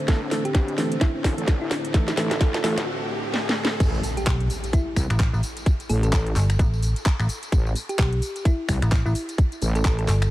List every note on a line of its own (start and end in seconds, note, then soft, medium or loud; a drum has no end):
0.00 3.76 A3 medium
0.00 3.76 D4 medium
0.00 3.79 C5 medium
0.00 riser medium
0.08 0.30 A1 loud
0.08 0.21 E3 medium
0.08 0.21 A3 medium
0.08 0.21 A4 loud
0.08 kick loud
0.08 snare medium
0.08 closed hi-hat medium
0.31 0.44 E3 medium
0.31 0.44 A3 medium
0.31 0.44 A4 medium
0.31 snare medium
0.31 open hi-hat loud
0.45 0.51 G4 medium
0.45 closed hi-hat medium
0.55 0.76 B1 loud
0.55 0.63 G4 medium
0.55 kick loud
0.55 snare medium
0.55 closed hi-hat medium
0.68 closed hi-hat soft
0.78 0.96 E3 medium
0.78 0.96 A3 medium
0.78 0.96 A4 medium
0.78 snare medium
0.78 open hi-hat loud
0.92 closed hi-hat medium
1.01 1.18 E4 medium
1.01 kick loud
1.01 snare medium
1.01 closed hi-hat medium
1.24 1.36 C2 medium
1.24 kick medium
1.24 snare medium
1.24 open hi-hat loud
1.38 1.59 A1 medium
1.38 1.54 E3 medium
1.38 1.54 A3 medium
1.38 1.54 A4 medium
1.38 closed hi-hat medium
1.48 kick loud
1.48 snare medium
1.48 closed hi-hat medium
1.61 1.69 A1 loud
1.61 1.76 E4 medium
1.71 snare medium
1.71 open hi-hat loud
1.85 closed hi-hat medium
1.94 2.12 E3 medium
1.94 2.13 A3 medium
1.94 2.12 A4 medium
1.94 kick loud
1.94 snare medium
1.94 closed hi-hat medium
2.08 snare medium
2.08 closed hi-hat soft
2.17 2.62 A1 loud
2.17 2.30 E3 medium
2.17 2.30 A3 medium
2.17 2.30 A4 medium
2.17 snare medium
2.17 open hi-hat loud
2.31 2.37 A4 medium
2.31 snare medium
2.31 closed hi-hat medium
2.41 2.49 A4 medium
2.41 kick loud
2.41 snare medium
2.41 closed hi-hat medium
2.54 2.60 A4 medium
2.54 snare medium
2.54 closed hi-hat soft
2.64 2.86 G1 loud
2.64 2.77 E3 loud
2.64 2.77 A3 medium
2.64 2.73 A4 medium
2.64 2.77 A4 loud
2.64 snare loud
2.64 open hi-hat loud
2.78 snare medium
2.78 closed hi-hat medium
3.34 snare medium
3.49 snare medium
3.65 snare loud
3.80 4.02 A1 loud
3.80 kick loud
3.80 closed hi-hat medium
3.80 tambourine soft
3.80 crash loud
3.80 impact medium
3.94 tambourine soft
4.03 open hi-hat loud
4.03 tambourine medium
4.17 4.23 G4 medium
4.17 closed hi-hat medium
4.17 tambourine soft
4.27 4.48 B1 loud
4.27 4.36 G4 medium
4.27 kick loud
4.27 clap loud
4.27 closed hi-hat medium
4.27 tambourine soft
4.40 closed hi-hat soft
4.50 open hi-hat loud
4.50 tambourine medium
4.64 closed hi-hat medium
4.64 tambourine soft
4.73 4.90 E4 medium
4.73 kick loud
4.73 closed hi-hat medium
4.73 tambourine soft
4.96 5.08 C2 loud
4.96 finger snap medium
4.96 kick medium
4.96 open hi-hat loud
4.96 tambourine medium
5.10 5.31 A1 loud
5.10 finger snap medium
5.10 closed hi-hat medium
5.10 tambourine soft
5.20 kick loud
5.20 clap loud
5.20 closed hi-hat medium
5.20 tambourine soft
5.33 5.41 A1 loud
5.33 tambourine soft
5.43 open hi-hat loud
5.43 tambourine medium
5.57 closed hi-hat medium
5.57 tambourine soft
5.66 kick loud
5.66 closed hi-hat medium
5.66 tambourine soft
5.80 closed hi-hat soft
5.80 tambourine soft
5.89 6.34 A1 loud
5.89 6.00 A4 loud
5.89 open hi-hat loud
5.89 tambourine medium
6.03 6.09 A4 medium
6.03 closed hi-hat medium
6.03 tambourine soft
6.13 6.22 A4 medium
6.13 kick loud
6.13 clap loud
6.13 closed hi-hat medium
6.13 tambourine soft
6.26 closed hi-hat soft
6.36 6.58 G1 medium
6.36 clap medium
6.36 open hi-hat loud
6.36 tambourine medium
6.50 finger snap medium
6.50 closed hi-hat medium
6.50 tambourine soft
6.59 6.94 A1 loud
6.59 kick loud
6.59 closed hi-hat medium
6.59 tambourine soft
6.74 tambourine soft
6.82 open hi-hat loud
6.82 tambourine medium
6.96 closed hi-hat medium
6.96 tambourine soft
7.06 kick loud
7.06 clap loud
7.06 closed hi-hat medium
7.06 tambourine soft
7.20 7.28 A1 loud
7.20 finger snap medium
7.20 tambourine soft
7.29 open hi-hat loud
7.29 tambourine medium
7.43 closed hi-hat medium
7.43 tambourine soft
7.52 7.74 A1 loud
7.52 kick loud
7.52 closed hi-hat medium
7.52 tambourine soft
7.67 tambourine soft
7.76 open hi-hat loud
7.76 tambourine medium
7.89 7.95 G4 medium
7.89 closed hi-hat medium
7.89 tambourine soft
7.99 8.21 B1 loud
7.99 8.08 G4 medium
7.99 kick loud
7.99 clap loud
7.99 closed hi-hat medium
7.99 tambourine soft
8.13 closed hi-hat soft
8.22 open hi-hat loud
8.22 tambourine medium
8.36 closed hi-hat medium
8.36 tambourine soft
8.45 8.62 E4 medium
8.45 kick loud
8.45 closed hi-hat medium
8.45 tambourine soft
8.69 8.80 C2 loud
8.69 finger snap medium
8.69 kick medium
8.69 open hi-hat loud
8.69 tambourine medium
8.82 9.03 A1 loud
8.82 finger snap medium
8.82 closed hi-hat medium
8.82 tambourine soft
8.92 kick loud
8.92 clap loud
8.92 closed hi-hat medium
8.92 tambourine soft
9.06 9.14 A1 loud
9.06 9.20 E4 medium
9.06 tambourine soft
9.15 open hi-hat loud
9.15 tambourine medium
9.29 closed hi-hat medium
9.29 tambourine soft
9.38 kick loud
9.38 closed hi-hat medium
9.38 tambourine soft
9.52 closed hi-hat soft
9.52 tambourine soft
9.62 10.07 A1 medium
9.62 open hi-hat loud
9.62 tambourine medium
9.75 9.81 A4 medium
9.75 closed hi-hat medium
9.75 tambourine soft
9.85 9.94 A4 medium
9.85 kick loud
9.85 clap loud
9.85 closed hi-hat medium
9.85 tambourine soft
9.99 10.05 A4 medium
9.99 closed hi-hat soft
10.08 10.30 G1 medium
10.08 10.17 A4 medium
10.08 clap medium
10.08 open hi-hat loud
10.08 tambourine medium
10.22 finger snap medium
10.22 closed hi-hat soft
10.22 tambourine soft